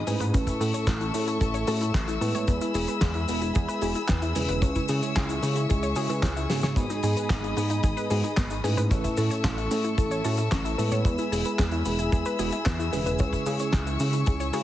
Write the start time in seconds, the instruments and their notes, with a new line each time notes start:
Already playing: string section G#4 D#5 B5 D#6
0.07 analog synth bass G#2, tine electric piano A2 A3 C#4 E4 B4, synth arpeggio sound G#4, open hi-hat, cabasa
0.20 analog synth bass G#2, synth arpeggio sound B4, closed hi-hat, cabasa
0.34 analog synth bass A1, synth arpeggio sound C#4, string section A4 E5 C#6 E6, kick, closed hi-hat, cabasa
0.47 synth arpeggio sound E4, kick, closed hi-hat, cabasa
0.60 analog synth bass A2, tine electric piano A2 A3 C#4 E4 A4, synth arpeggio sound A4, open hi-hat, cabasa
0.74 synth arpeggio sound C#5, closed hi-hat, cabasa
0.87 analog synth bass A1, synth arpeggio sound A4, kick, snare, clap, closed hi-hat, cabasa
1.01 synth arpeggio sound E4, closed hi-hat
1.14 tine electric piano A2 A3 C#4 E4 A4, analog synth bass A2, synth arpeggio sound C#4, open hi-hat, cabasa
1.27 synth arpeggio sound E4, closed hi-hat, cabasa
1.41 analog synth bass A1, synth arpeggio sound A4, kick, closed hi-hat, cabasa
1.54 synth arpeggio sound C#5, closed hi-hat, cabasa
1.67 tine electric piano A2 A3 C#4 E4 F#4, analog synth bass A2, synth arpeggio sound A4, open hi-hat, cabasa
1.81 synth arpeggio sound E4, closed hi-hat, cabasa
1.94 analog synth bass A1, synth arpeggio sound C#4, kick, snare, clap, closed hi-hat, cabasa
2.08 synth arpeggio sound E4, closed hi-hat, cabasa
2.21 analog synth bass A2, tine electric piano G#3 B3 E4 B4, synth arpeggio sound A4, open hi-hat, cabasa
2.35 analog synth bass A2, synth arpeggio sound C#5, closed hi-hat, cabasa
2.47 analog synth bass E2, synth arpeggio sound B3, string section G#4 E5 B5, kick, closed hi-hat, cabasa
2.61 synth arpeggio sound E4, closed hi-hat, cabasa
2.74 analog synth bass E1, tine electric piano G#3 B3 E4 G#4, synth arpeggio sound G#4, open hi-hat, cabasa
2.87 synth arpeggio sound B4, closed hi-hat, cabasa
3.01 analog synth bass E2, synth arpeggio sound G#4, kick, snare, clap, closed hi-hat, cabasa
3.14 synth arpeggio sound E4, closed hi-hat
3.28 analog synth bass E1, tine electric piano G#3 B3 E4 G#4, synth arpeggio sound B3, open hi-hat, cabasa
3.42 synth arpeggio sound E4, closed hi-hat, cabasa
3.55 analog synth bass E2, synth arpeggio sound G#4, kick, closed hi-hat, cabasa
3.68 synth arpeggio sound B4, closed hi-hat, cabasa
3.81 analog synth bass E1, tine electric piano G#3 B3 E4 F#4, synth arpeggio sound G#4, open hi-hat, cabasa
3.95 synth arpeggio sound E4, closed hi-hat, cabasa
4.08 analog synth bass E2, synth arpeggio sound B3, kick, snare, clap, closed hi-hat, cabasa
4.22 synth arpeggio sound E4, closed hi-hat, cabasa
4.35 analog synth bass E1, tine electric piano C#3 G#3 C#4 E4 B4, synth arpeggio sound G#4, open hi-hat, cabasa
4.48 analog synth bass E1, synth arpeggio sound B4, closed hi-hat, cabasa
4.62 analog synth bass C#2, synth arpeggio sound C#4, string section G#4 E5 C#6, kick, closed hi-hat, cabasa
4.75 synth arpeggio sound E4, kick, closed hi-hat, cabasa
4.88 tine electric piano C#3 G#3 C#4 E4 G#4, analog synth bass C#3, synth arpeggio sound G#4, open hi-hat, cabasa
5.02 synth arpeggio sound C#5, closed hi-hat, cabasa
5.15 analog synth bass C#2, synth arpeggio sound G#4, kick, snare, clap, closed hi-hat, cabasa
5.29 synth arpeggio sound E4, closed hi-hat, cabasa
5.43 analog synth bass C#3, tine electric piano C#3 G#3 C#4 E4 G#4, synth arpeggio sound C#4, open hi-hat, cabasa
5.56 synth arpeggio sound E4, closed hi-hat, cabasa
5.69 analog synth bass C#2, synth arpeggio sound G#4, kick, closed hi-hat, cabasa
5.83 synth arpeggio sound C#5, closed hi-hat, cabasa
5.96 analog synth bass C#3, tine electric piano C#3 G#3 C#4 E4 F#4, synth arpeggio sound G#4, open hi-hat, cabasa
6.09 tine electric piano C#3 G#3 C#4 E4 B4, synth arpeggio sound E4, closed hi-hat, cabasa
6.23 analog synth bass C#2, synth arpeggio sound C#4, kick, snare, clap, closed hi-hat, cabasa
6.36 synth arpeggio sound E4, closed hi-hat, cabasa
6.50 tine electric piano G#2 G#3 B3 D#4 F#4, analog synth bass C#3, synth arpeggio sound G#4, snare, open hi-hat, cabasa
6.63 analog synth bass C#3, synth arpeggio sound C#5, snare, closed hi-hat, cabasa
6.76 analog synth bass G#1, synth arpeggio sound B3, string section D#5 B5 D#6, kick, closed hi-hat, cabasa
6.90 synth arpeggio sound D#4, closed hi-hat, cabasa
7.03 analog synth bass G#2, tine electric piano G#2 G#3 B3 D#4 G#4, synth arpeggio sound G#4, open hi-hat, cabasa
7.17 synth arpeggio sound B4, closed hi-hat, cabasa
7.30 analog synth bass G#1, synth arpeggio sound G#4, kick, snare, clap, closed hi-hat, cabasa
7.43 synth arpeggio sound D#4, closed hi-hat
7.57 analog synth bass G#2, tine electric piano G#2 G#3 B3 D#4 G#4, synth arpeggio sound B3, open hi-hat, cabasa
7.70 synth arpeggio sound D#4, closed hi-hat, cabasa
7.83 analog synth bass G#1, synth arpeggio sound G#4, kick, closed hi-hat, cabasa
7.97 synth arpeggio sound B4, closed hi-hat, cabasa
8.10 analog synth bass G#2, tine electric piano G#2 G#3 B3 D#4 F#4, synth arpeggio sound G#4, open hi-hat, cabasa
8.24 synth arpeggio sound D#4, closed hi-hat, cabasa
8.37 analog synth bass G#1, synth arpeggio sound B3, kick, snare, clap, closed hi-hat, cabasa
8.50 synth arpeggio sound D#4, closed hi-hat, cabasa
8.64 analog synth bass G#2, tine electric piano A2 A3 C#4 E4 B4, synth arpeggio sound G#4, open hi-hat, cabasa
8.77 analog synth bass G#2, synth arpeggio sound B4, closed hi-hat, cabasa
8.91 analog synth bass A1, synth arpeggio sound C#4, string section A4 E5 C#6 E6, kick, closed hi-hat, cabasa
9.04 synth arpeggio sound E4, kick, closed hi-hat, cabasa
9.17 analog synth bass A2, tine electric piano A2 A3 C#4 E4 A4, synth arpeggio sound A4, open hi-hat, cabasa
9.31 synth arpeggio sound C#5, closed hi-hat, cabasa
9.44 analog synth bass A1, synth arpeggio sound A4, kick, snare, clap, closed hi-hat, cabasa
9.58 synth arpeggio sound E4, closed hi-hat
9.71 analog synth bass A2, tine electric piano A2 A3 C#4 E4 A4, synth arpeggio sound C#4, open hi-hat, cabasa
9.84 synth arpeggio sound E4, closed hi-hat, cabasa
9.98 analog synth bass A1, synth arpeggio sound A4, kick, closed hi-hat, cabasa
10.11 synth arpeggio sound C#5, closed hi-hat, cabasa
10.24 analog synth bass A2, tine electric piano A2 A3 C#4 E4 F#4, synth arpeggio sound A4, open hi-hat, cabasa
10.37 synth arpeggio sound E4, closed hi-hat, cabasa
10.51 analog synth bass A1, synth arpeggio sound C#4, kick, snare, clap, closed hi-hat, cabasa
10.65 synth arpeggio sound E4, closed hi-hat, cabasa
10.78 analog synth bass A2, tine electric piano G#3 B3 E4 B4, synth arpeggio sound A4, open hi-hat, cabasa
10.91 analog synth bass A2, synth arpeggio sound C#5, closed hi-hat, cabasa
11.05 analog synth bass E2, synth arpeggio sound B3, string section G#4 B5, kick, closed hi-hat, cabasa
11.18 synth arpeggio sound E4, closed hi-hat, cabasa
11.32 analog synth bass E1, tine electric piano G#3 B3 E4 G#4, synth arpeggio sound G#4, open hi-hat, cabasa
11.45 synth arpeggio sound B4, closed hi-hat, cabasa
11.58 analog synth bass E2, synth arpeggio sound G#4, kick, snare, clap, closed hi-hat, cabasa
11.71 synth arpeggio sound E4, closed hi-hat
11.85 analog synth bass E1, tine electric piano G#3 B3 E4 G#4, synth arpeggio sound B3, open hi-hat, cabasa
11.99 synth arpeggio sound E4, closed hi-hat, cabasa
12.12 analog synth bass E2, synth arpeggio sound G#4, kick, closed hi-hat, cabasa
12.25 synth arpeggio sound B4, closed hi-hat, cabasa
12.39 analog synth bass E1, tine electric piano G#3 B3 E4 F#4, synth arpeggio sound G#4, open hi-hat, cabasa
12.52 synth arpeggio sound E4, closed hi-hat, cabasa
12.66 analog synth bass E2, synth arpeggio sound B3, kick, snare, clap, closed hi-hat, cabasa
12.79 synth arpeggio sound E4, closed hi-hat, cabasa
12.93 analog synth bass E1, tine electric piano C#3 G#3 C#4 E4 B4, synth arpeggio sound G#4, open hi-hat, cabasa
13.06 analog synth bass E1, synth arpeggio sound B4, closed hi-hat, cabasa
13.19 analog synth bass C#2, synth arpeggio sound C#4, string section C#6, kick, closed hi-hat, cabasa
13.33 synth arpeggio sound E4, kick, closed hi-hat, cabasa
13.46 tine electric piano C#3 G#3 C#4 E4 G#4, analog synth bass C#3, synth arpeggio sound G#4, open hi-hat, cabasa
13.59 synth arpeggio sound C#5, closed hi-hat, cabasa
13.72 analog synth bass C#2, synth arpeggio sound G#4, kick, snare, clap, closed hi-hat, cabasa
13.87 synth arpeggio sound E4, closed hi-hat, cabasa
14.00 analog synth bass C#3, tine electric piano C#3 G#3 C#4 E4 G#4, synth arpeggio sound C#4, open hi-hat, cabasa
14.13 synth arpeggio sound E4, closed hi-hat, cabasa
14.26 analog synth bass C#2, synth arpeggio sound G#4, kick, closed hi-hat, cabasa
14.40 synth arpeggio sound C#5, closed hi-hat, cabasa
14.53 analog synth bass C#3, tine electric piano C#3 G#3 C#4 E4 F#4, synth arpeggio sound G#4, open hi-hat, cabasa